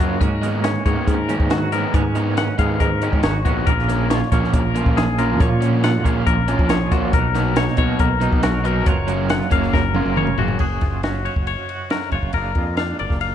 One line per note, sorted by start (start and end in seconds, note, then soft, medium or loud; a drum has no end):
0.00 0.20 F#2 medium
0.00 0.22 F#2 medium
0.00 0.21 C#3 medium
0.00 0.22 C#3 medium
0.00 0.20 F#3 medium
0.00 0.22 F#3 medium
0.00 0.21 A#3 medium
0.00 0.21 C#4 medium
0.00 0.19 F4 medium
0.00 0.20 F#4 medium
0.00 0.23 A#4 medium
0.00 closed hi-hat medium
0.20 1.91 G#2 medium
0.20 0.75 G#2 loud
0.20 0.85 G#3 medium
0.20 0.43 A#3 medium
0.20 0.65 C#4 medium
0.20 1.51 F#4 medium
0.20 0.64 A#4 medium
0.20 kick loud
0.20 closed hi-hat medium
0.42 0.71 D#3 medium
0.42 0.71 G#3 medium
0.42 0.86 A#3 medium
0.42 0.71 B3 medium
0.42 0.71 D#4 loud
0.42 snare soft
0.42 closed hi-hat medium
0.64 1.29 C#4 medium
0.64 0.84 C#5 medium
0.64 snare loud
0.64 closed hi-hat medium
0.86 0.95 G#2 medium
0.86 1.15 D#3 medium
0.86 2.20 G#3 medium
0.86 1.15 G#3 medium
0.86 2.16 A#3 medium
0.86 1.15 B3 medium
0.86 1.14 D#4 medium
0.86 1.07 C#5 medium
0.86 kick medium
0.86 closed hi-hat medium
1.07 1.35 G#2 medium
1.07 1.51 A#4 medium
1.07 kick medium
1.07 closed hi-hat medium
1.29 1.58 D#3 medium
1.29 1.58 G#3 medium
1.29 1.58 B3 medium
1.29 1.73 C#4 medium
1.29 1.57 D#4 medium
1.29 closed hi-hat medium
1.40 1.85 G#2 medium
1.40 kick medium
1.50 1.92 D#3 medium
1.50 1.73 F#4 medium
1.50 3.24 F#4 medium
1.50 snare loud
1.50 closed hi-hat medium
1.72 2.01 D#3 medium
1.72 2.01 G#3 medium
1.72 2.01 B3 medium
1.72 1.95 C#4 medium
1.72 2.01 D#4 medium
1.72 1.94 A#4 medium
1.72 snare soft
1.72 closed hi-hat medium
1.94 2.48 G#2 medium
1.94 3.65 G#2 medium
1.94 2.38 C#4 medium
1.94 2.38 C#5 medium
1.94 kick loud
1.94 closed hi-hat medium
2.15 2.44 D#3 medium
2.15 2.44 G#3 medium
2.15 2.60 A#3 medium
2.15 2.44 B3 medium
2.15 2.44 D#4 medium
2.15 closed hi-hat medium
2.37 3.02 C#4 medium
2.37 2.58 F#5 medium
2.37 snare loud
2.37 closed hi-hat medium
2.59 2.77 G#2 loud
2.59 2.88 D#3 medium
2.59 3.69 G#3 medium
2.59 2.88 G#3 medium
2.59 3.69 A#3 soft
2.59 2.88 B3 medium
2.59 2.87 D#4 medium
2.59 2.81 F5 medium
2.59 kick medium
2.59 closed hi-hat medium
2.80 3.08 G#2 medium
2.80 3.23 A#4 medium
2.80 kick medium
2.80 closed hi-hat medium
3.02 3.31 D#3 medium
3.02 3.31 G#3 medium
3.02 3.31 B3 medium
3.02 3.46 C#4 medium
3.02 3.31 D#4 medium
3.02 closed hi-hat medium
3.13 3.23 G#2 medium
3.13 kick medium
3.23 3.44 G#1 medium
3.23 3.65 D#3 medium
3.23 3.68 F#4 medium
3.23 3.46 C#5 medium
3.23 snare loud
3.23 closed hi-hat medium
3.45 3.67 A#1 medium
3.45 3.68 D#3 medium
3.45 3.68 G#3 medium
3.45 3.68 B3 medium
3.45 3.70 C#4 medium
3.45 3.67 D#4 medium
3.45 3.67 F#4 medium
3.45 kick medium
3.45 closed hi-hat medium
3.67 4.21 A#1 loud
3.67 5.39 A#2 medium
3.67 4.32 A#3 medium
3.67 3.90 C#4 medium
3.67 4.10 A#4 medium
3.67 kick loud
3.67 closed hi-hat medium
3.71 4.12 F4 medium
3.71 4.96 G#4 medium
3.79 snare soft
3.89 4.18 A#2 medium
3.89 4.17 F3 medium
3.89 4.17 A#3 medium
3.89 4.17 C#4 medium
3.89 4.32 C#4 medium
3.89 snare soft
3.89 closed hi-hat medium
4.10 4.75 F4 medium
4.10 4.31 C#5 medium
4.10 snare loud
4.10 closed hi-hat medium
4.22 snare soft
4.32 4.41 A#1 medium
4.32 4.61 A#2 medium
4.32 4.61 F3 medium
4.32 6.04 A#3 medium
4.32 4.61 A#3 medium
4.32 4.61 C#4 medium
4.32 4.54 C#5 medium
4.32 kick medium
4.32 closed hi-hat medium
4.43 5.41 C#4 soft
4.43 snare soft
4.53 4.81 A#1 medium
4.53 4.97 A#4 medium
4.53 kick medium
4.53 closed hi-hat medium
4.75 5.04 A#2 medium
4.75 5.04 F3 medium
4.75 5.04 A#3 medium
4.75 5.04 C#4 medium
4.75 5.18 F4 medium
4.75 closed hi-hat medium
4.86 5.41 A#1 medium
4.86 kick medium
4.97 5.38 F3 medium
4.97 5.19 G#4 medium
4.97 5.38 G#4 medium
4.97 snare loud
4.97 closed hi-hat medium
5.18 5.48 A#2 medium
5.18 5.48 F3 medium
5.18 5.47 A#3 medium
5.18 5.47 C#4 medium
5.18 5.39 F4 medium
5.18 5.40 A#4 medium
5.18 closed hi-hat medium
5.40 7.11 A#2 medium
5.40 6.05 A#2 medium
5.40 5.83 F4 medium
5.40 5.84 C#5 medium
5.40 kick loud
5.40 closed hi-hat medium
5.61 5.91 A#2 medium
5.61 5.91 F3 medium
5.61 5.90 A#3 medium
5.61 5.90 C#4 medium
5.61 6.04 C#4 medium
5.61 closed hi-hat medium
5.84 6.47 F4 medium
5.84 6.05 F#5 medium
5.84 snare loud
5.84 closed hi-hat medium
6.04 6.23 A#1 loud
6.04 6.34 A#2 medium
6.04 6.34 F3 medium
6.04 7.14 A#3 medium
6.04 6.34 A#3 medium
6.04 7.11 C#4 medium
6.04 6.34 C#4 medium
6.04 6.27 F5 medium
6.04 kick medium
6.04 closed hi-hat medium
6.26 6.54 A#1 medium
6.26 6.70 A#4 medium
6.26 kick medium
6.26 closed hi-hat medium
6.48 6.77 A#2 medium
6.48 6.77 F3 medium
6.48 6.77 A#3 medium
6.48 6.77 C#4 loud
6.48 6.91 F4 medium
6.48 closed hi-hat medium
6.59 6.86 A#1 medium
6.59 kick medium
6.69 7.11 F3 medium
6.69 7.11 G#4 medium
6.69 6.92 C#5 medium
6.69 snare loud
6.69 closed hi-hat medium
6.92 7.13 A#1 medium
6.92 7.14 A#2 medium
6.92 7.14 F3 medium
6.92 7.14 A#3 medium
6.92 7.14 C#4 medium
6.92 7.11 F4 medium
6.92 7.14 F#4 medium
6.92 kick medium
6.92 closed hi-hat medium
7.13 7.67 B1 loud
7.13 8.84 B2 medium
7.13 7.78 F#3 medium
7.13 7.35 A#3 medium
7.13 7.56 D#4 medium
7.13 7.57 A#4 medium
7.13 8.44 A#4 medium
7.13 kick loud
7.13 closed hi-hat medium
7.35 7.64 B2 medium
7.35 7.64 F#3 medium
7.35 7.78 A#3 medium
7.35 7.63 B3 medium
7.35 7.63 D#4 loud
7.35 snare soft
7.35 closed hi-hat medium
7.56 8.21 D#4 medium
7.56 7.77 C#5 medium
7.56 snare loud
7.56 closed hi-hat medium
7.68 snare soft
7.77 7.87 B1 medium
7.77 8.07 B2 medium
7.77 8.43 F#3 medium
7.77 8.07 F#3 medium
7.77 8.88 A#3 medium
7.77 8.06 B3 medium
7.77 8.06 D#4 medium
7.77 8.00 C#5 medium
7.77 kick medium
7.77 closed hi-hat medium
7.99 8.27 B1 loud
7.99 8.43 A#4 medium
7.99 kick medium
7.99 closed hi-hat medium
8.21 8.50 B2 medium
8.21 8.50 F#3 medium
8.21 8.50 B3 medium
8.21 8.49 D#4 medium
8.21 8.65 D#4 medium
8.21 closed hi-hat medium
8.32 8.87 B1 medium
8.32 kick medium
8.43 8.88 F#3 medium
8.43 8.65 F#4 medium
8.43 8.89 A#4 medium
8.43 snare loud
8.43 closed hi-hat medium
8.64 8.87 B2 medium
8.64 8.87 F#3 medium
8.64 8.86 B3 medium
8.64 8.86 D#4 medium
8.64 8.85 D#4 medium
8.64 8.87 A#4 medium
8.64 closed hi-hat medium
8.86 9.40 F#1 medium
8.86 10.58 F#2 medium
8.86 9.51 F#3 medium
8.86 9.09 A#3 medium
8.86 9.31 F4 medium
8.86 10.16 A#4 medium
8.86 9.30 C#5 loud
8.86 kick loud
8.86 closed hi-hat medium
9.07 9.37 C#3 medium
9.07 9.37 F#3 medium
9.07 9.36 A#3 medium
9.07 9.52 A#3 medium
9.07 9.36 C#4 loud
9.07 closed hi-hat medium
9.30 9.95 F4 medium
9.30 9.52 F#5 medium
9.30 snare loud
9.30 closed hi-hat medium
9.41 snare soft
9.50 9.70 F#1 loud
9.50 9.80 C#3 medium
9.50 9.80 F#3 medium
9.50 11.24 F#3 medium
9.50 9.80 A#3 medium
9.50 11.04 A#3 medium
9.50 9.79 C#4 medium
9.50 9.74 F5 medium
9.50 kick medium
9.50 closed hi-hat medium
9.63 snare soft
9.73 10.00 F#1 medium
9.73 10.17 A#4 medium
9.73 kick medium
9.73 snare medium
9.94 10.24 C#3 medium
9.94 10.24 F#3 medium
9.94 10.24 A#3 medium
9.94 10.23 C#4 loud
9.94 10.37 F4 medium
9.94 high tom medium
10.06 10.33 F#1 medium
10.17 10.60 C#3 medium
10.17 10.58 A#4 medium
10.17 10.39 C#5 medium
10.17 mid tom medium
10.27 mid tom medium
10.38 10.57 F#1 medium
10.38 10.61 C#3 medium
10.38 10.61 F#3 medium
10.38 10.60 A#3 medium
10.38 10.60 C#4 medium
10.38 10.58 F4 medium
10.38 10.60 F#4 medium
10.38 floor tom medium
10.48 floor tom medium
10.59 10.78 F#1 medium
10.59 11.90 F#2 medium
10.59 11.69 F#4 medium
10.59 11.03 G#4 medium
10.59 kick medium
10.59 crash medium
10.81 11.27 F#1 medium
10.81 12.14 F4 soft
10.81 kick medium
10.81 snare soft
10.81 ride medium
11.03 12.32 C#4 medium
11.03 11.26 F#4 medium
11.03 snare medium
11.03 ride medium
11.25 12.34 F#3 medium
11.25 11.46 C#5 medium
11.25 ride medium
11.36 11.54 F#1 medium
11.36 kick medium
11.47 11.91 C#5 medium
11.47 ride medium
11.69 12.35 F#4 medium
11.69 ride medium
11.90 12.35 F#2 medium
11.90 12.12 A#4 medium
11.90 snare medium
11.90 ride medium
12.01 snare soft
12.11 12.21 F#1 medium
12.11 12.37 F4 soft
12.11 12.34 C#5 medium
12.11 kick medium
12.11 ride medium
12.23 12.32 F#1 medium
12.23 kick medium
12.33 12.52 F#1 medium
12.33 12.99 A#3 medium
12.33 12.77 A#4 medium
12.33 kick medium
12.33 ride medium
12.37 12.78 D4 medium
12.37 12.58 F4 medium
12.37 13.35 G#4 medium
12.55 12.92 F2 medium
12.55 13.35 F4 soft
12.55 kick medium
12.55 ride soft
12.77 13.35 D4 medium
12.77 12.99 F5 medium
12.77 snare medium
12.77 ride medium
12.99 13.09 F#1 medium
12.99 13.35 A#3 medium
12.99 13.21 D5 medium
12.99 ride medium
13.10 13.35 F#1 medium
13.10 kick medium
13.10 snare soft
13.21 13.35 F5 medium
13.21 ride medium